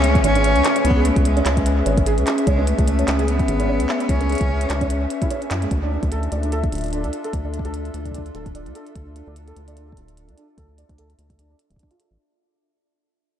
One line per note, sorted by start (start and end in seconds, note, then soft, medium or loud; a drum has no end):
0.00 0.20 C#2 medium
0.00 0.21 C#4 loud
0.00 5.67 C#4 medium
0.00 5.67 G#4 medium
0.00 5.67 B4 medium
0.00 12.16 E5 medium
0.00 clap soft
0.00 closed hi-hat medium
0.15 kick loud
0.15 closed hi-hat soft
0.24 0.57 G#1 loud
0.24 0.81 C#4 loud
0.24 0.32 C#4 medium
0.24 closed hi-hat medium
0.35 0.41 C#4 medium
0.35 closed hi-hat medium
0.44 closed hi-hat medium
0.56 0.62 C#2 loud
0.56 closed hi-hat soft
0.65 clap loud
0.65 closed hi-hat medium
0.76 0.82 C#5 medium
0.76 closed hi-hat medium
0.85 1.11 C#2 loud
0.85 1.07 B3 loud
0.85 0.96 C#4 medium
0.85 closed hi-hat medium
0.90 kick loud
0.96 1.02 G#4 loud
1.05 1.25 A3 medium
1.05 closed hi-hat medium
1.16 1.42 C#2 loud
1.16 kick loud
1.16 closed hi-hat medium
1.25 1.82 G#3 medium
1.25 closed hi-hat medium
1.37 1.43 C#4 medium
1.37 closed hi-hat soft
1.46 1.82 C#2 medium
1.46 1.53 C#4 medium
1.46 clap loud
1.46 closed hi-hat medium
1.57 kick medium
1.57 closed hi-hat medium
1.66 closed hi-hat medium
1.86 2.19 G#1 loud
1.86 1.94 C#5 medium
1.86 closed hi-hat medium
1.97 2.06 C#4 medium
1.97 kick loud
1.97 closed hi-hat medium
2.06 2.14 G#4 loud
2.06 closed hi-hat medium
2.18 2.24 C#2 loud
2.18 closed hi-hat soft
2.27 clap loud
2.27 closed hi-hat medium
2.38 closed hi-hat medium
2.47 2.74 C#2 loud
2.47 2.69 G#3 medium
2.47 2.55 C#4 medium
2.47 kick loud
2.47 closed hi-hat medium
2.58 2.64 C#4 medium
2.67 3.27 A3 medium
2.67 closed hi-hat medium
2.79 3.04 C#2 loud
2.79 kick loud
2.79 closed hi-hat medium
2.88 closed hi-hat medium
2.99 3.05 C#5 medium
2.99 closed hi-hat soft
3.08 3.45 C#2 medium
3.08 3.19 C#4 medium
3.08 clap loud
3.08 closed hi-hat medium
3.19 3.25 G#4 loud
3.19 closed hi-hat medium
3.28 4.11 B3 loud
3.28 closed hi-hat medium
3.39 kick loud
3.39 closed hi-hat soft
3.48 3.81 G#1 loud
3.48 closed hi-hat medium
3.60 3.66 C#4 medium
3.60 closed hi-hat medium
3.69 3.76 C#4 medium
3.80 3.86 C#2 loud
3.80 closed hi-hat medium
3.89 clap loud
4.00 closed hi-hat medium
4.09 4.36 C#2 loud
4.09 4.90 C#4 loud
4.09 4.17 C#5 medium
4.09 kick loud
4.09 closed hi-hat medium
4.21 4.29 C#4 medium
4.21 closed hi-hat soft
4.30 4.37 G#4 loud
4.30 closed hi-hat soft
4.32 closed hi-hat soft
4.35 closed hi-hat medium
4.38 4.66 C#2 loud
4.38 kick loud
4.38 closed hi-hat medium
4.41 closed hi-hat soft
4.61 closed hi-hat medium
4.70 5.07 C#2 medium
4.70 4.77 C#4 medium
4.70 clap loud
4.70 closed hi-hat medium
4.81 4.87 C#4 medium
4.81 kick medium
4.81 closed hi-hat soft
4.90 closed hi-hat medium
5.10 closed hi-hat medium
5.22 5.25 E4 medium
5.22 kick loud
5.22 closed hi-hat soft
5.31 5.38 C#4 medium
5.31 closed hi-hat medium
5.42 closed hi-hat soft
5.51 5.66 F#2 medium
5.51 5.55 E4 medium
5.51 clap loud
5.51 closed hi-hat medium
5.62 5.68 G#3 medium
5.62 closed hi-hat soft
5.71 5.98 D2 loud
5.71 12.16 D4 medium
5.71 12.16 F4 medium
5.71 12.16 A4 medium
5.71 kick loud
5.71 closed hi-hat medium
5.83 5.89 D4 medium
5.92 5.99 D4 medium
6.03 6.28 D2 loud
6.03 kick loud
6.03 closed hi-hat soft
6.12 6.19 A4 medium
6.12 closed hi-hat medium
6.23 closed hi-hat soft
6.32 6.69 D2 medium
6.32 6.40 D5 medium
6.32 closed hi-hat medium
6.43 6.52 D4 medium
6.43 closed hi-hat soft
6.52 6.60 A4 loud
6.52 closed hi-hat medium
6.64 kick loud
6.64 closed hi-hat soft
6.72 7.06 D1 loud
6.72 closed hi-hat medium
6.75 closed hi-hat medium
6.78 closed hi-hat soft
6.81 closed hi-hat soft
6.84 closed hi-hat soft
6.86 closed hi-hat soft
6.88 closed hi-hat soft
6.91 7.00 D4 medium
6.91 closed hi-hat soft
6.93 closed hi-hat medium
7.04 7.11 D2 loud
7.04 7.10 D4 medium
7.04 closed hi-hat soft
7.13 closed hi-hat medium
7.24 7.30 A4 medium
7.24 closed hi-hat soft
7.33 7.60 D2 loud
7.33 kick medium
7.33 closed hi-hat medium
7.45 7.51 D5 medium
7.54 7.64 D4 medium
7.54 closed hi-hat medium
7.59 kick loud
7.65 7.90 D2 loud
7.65 7.71 A4 loud
7.65 closed hi-hat soft
7.74 closed hi-hat medium
7.85 closed hi-hat soft
7.94 8.31 D2 medium
7.94 closed hi-hat medium
8.06 8.12 D4 medium
8.06 kick soft
8.06 closed hi-hat soft
8.11 8.22 D4 medium
8.11 kick soft
8.11 closed hi-hat medium
8.18 kick medium
8.26 closed hi-hat soft
8.35 8.68 D1 loud
8.35 8.42 A4 loud
8.35 closed hi-hat medium
8.46 kick medium
8.46 closed hi-hat soft
8.55 8.63 D5 medium
8.55 closed hi-hat medium
8.66 8.73 D2 loud
8.66 8.75 D4 medium
8.66 closed hi-hat soft
8.75 8.83 A4 medium
8.75 closed hi-hat medium
8.87 closed hi-hat soft
8.96 9.22 D2 loud
8.96 kick medium
8.96 closed hi-hat medium
9.16 9.23 D4 medium
9.16 closed hi-hat medium
9.27 9.53 D2 loud
9.27 9.33 D4 medium
9.36 closed hi-hat medium
9.48 9.53 A4 medium
9.48 closed hi-hat soft
9.57 9.93 D2 medium
9.57 closed hi-hat medium
9.68 9.74 D5 medium
9.68 closed hi-hat soft
9.77 9.87 D4 medium
9.77 closed hi-hat medium
9.88 9.94 A4 medium
9.92 kick loud
9.97 10.30 D1 loud
9.97 closed hi-hat medium
10.08 closed hi-hat soft
10.17 closed hi-hat medium
10.29 10.35 D2 loud
10.29 10.34 D4 medium
10.29 closed hi-hat soft
10.38 10.45 D4 medium
10.38 closed hi-hat medium
10.58 10.84 D2 medium
10.58 10.65 A4 medium
10.58 kick medium
10.58 closed hi-hat medium
10.78 10.86 D5 medium
10.78 closed hi-hat medium
10.89 11.15 D2 loud
10.89 10.98 D4 medium
10.89 kick medium
10.89 closed hi-hat soft
10.98 11.06 A4 medium
10.98 closed hi-hat medium
11.10 closed hi-hat soft
11.19 11.55 D2 medium
11.19 closed hi-hat medium
11.30 kick medium
11.30 closed hi-hat soft
11.39 11.46 D4 medium
11.39 closed hi-hat medium
11.50 11.56 D4 medium
11.59 closed hi-hat medium
11.70 11.77 D1 loud
11.70 kick soft
11.70 closed hi-hat soft
11.76 11.87 D4 medium
11.76 kick medium
11.76 closed hi-hat medium
11.83 kick medium
11.91 11.97 F4 medium
11.91 closed hi-hat soft
12.00 12.04 A4 medium
12.00 closed hi-hat medium
12.11 12.18 A1 medium